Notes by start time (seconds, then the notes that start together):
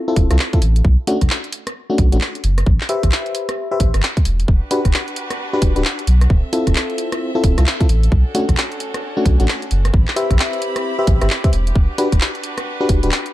0.08 C4 E4 F4 A4
0.16 D1, kick, open hi-hat
0.30 C2 C4 E4 F4 A4, cross-stick, closed hi-hat
0.39 clap
0.53 C4 E4 F4 A4, kick, closed hi-hat
0.62 A1, open hi-hat
0.76 closed hi-hat
0.85 B1, kick
1.07 A3 C#4 D4 F#4, open hi-hat
1.21 B1, kick, cross-stick, closed hi-hat
1.30 clap
1.44 closed hi-hat
1.53 open hi-hat
1.67 cross-stick, closed hi-hat
1.90 A3 C#4 D4 F#4
1.98 B1, kick, open hi-hat
2.12 A1 A3 C#4 D4 F#4, closed hi-hat
2.21 clap
2.35 closed hi-hat
2.44 F#1, open hi-hat
2.58 cross-stick, closed hi-hat
2.66 A1, kick
2.81 clap
2.89 G4 B4 C5 E5, open hi-hat
3.03 A1, kick, cross-stick, closed hi-hat
3.12 clap
3.26 closed hi-hat
3.35 open hi-hat
3.49 cross-stick, closed hi-hat
3.71 G4 B4 C5 E5
3.80 A1, kick, open hi-hat
3.94 G1, cross-stick, closed hi-hat
4.03 clap
4.17 kick, closed hi-hat
4.25 E1, open hi-hat
4.40 open hi-hat
4.48 E1 D4 F#4 G4 B4, kick
4.71 D4 F#4 G4 B4, open hi-hat
4.85 E1, kick, cross-stick, closed hi-hat
4.94 clap
5.08 closed hi-hat
5.16 open hi-hat
5.30 cross-stick, closed hi-hat
5.53 D4 F#4 G4 B4
5.62 E1, kick, open hi-hat
5.76 D1 D4 F#4 G4 B4, closed hi-hat
5.85 clap
5.99 closed hi-hat
6.07 B1, open hi-hat
6.21 cross-stick, closed hi-hat
6.30 D1 C4 A4 E5, kick
6.53 C4 E4 F4 A4, open hi-hat
6.67 D1, kick, cross-stick, closed hi-hat
6.76 clap
6.90 closed hi-hat
6.98 open hi-hat
7.12 cross-stick, closed hi-hat
7.35 C4 E4 F4 A4
7.44 D1, kick, open hi-hat
7.58 C2 C4 E4 F4 A4, cross-stick, closed hi-hat
7.67 clap
7.80 C4 E4 F4 A4, kick, closed hi-hat
7.89 A1, open hi-hat
8.03 closed hi-hat
8.12 B1 C#4 D4 F#4, kick
8.35 A3 C#4 D4 F#4, open hi-hat
8.49 B1, kick, cross-stick, closed hi-hat
8.57 clap
8.72 closed hi-hat
8.80 open hi-hat
8.94 cross-stick, closed hi-hat
9.17 A3 C#4 D4 F#4
9.25 B1, kick, open hi-hat
9.40 A1 A3 C#4 D4 F#4, closed hi-hat
9.48 clap
9.62 closed hi-hat
9.71 F#1, open hi-hat
9.85 cross-stick, closed hi-hat
9.93 A1 C4 E4 G4 B5, kick
10.08 clap
10.16 G4 B4 C5 E5, open hi-hat
10.30 A1, kick, cross-stick, closed hi-hat
10.39 clap
10.53 closed hi-hat
10.62 open hi-hat
10.76 cross-stick, closed hi-hat
10.99 G4 B4 C5 E5
11.07 A1, kick, open hi-hat
11.21 G1 G4 B4 C5 E5, cross-stick, closed hi-hat
11.30 clap
11.44 G4 B4 C5 E5, kick, closed hi-hat
11.53 E1, open hi-hat
11.67 closed hi-hat
11.75 E1 D4 F#4 B4, kick
11.98 D4 F#4 G4 B4, open hi-hat
12.12 E1, kick, cross-stick, closed hi-hat
12.21 clap
12.35 closed hi-hat
12.44 open hi-hat
12.58 cross-stick, closed hi-hat
12.81 D4 F#4 G4 B4
12.89 E1, kick, open hi-hat
13.03 D1 D4 F#4 G4 B4, closed hi-hat
13.12 clap
13.26 closed hi-hat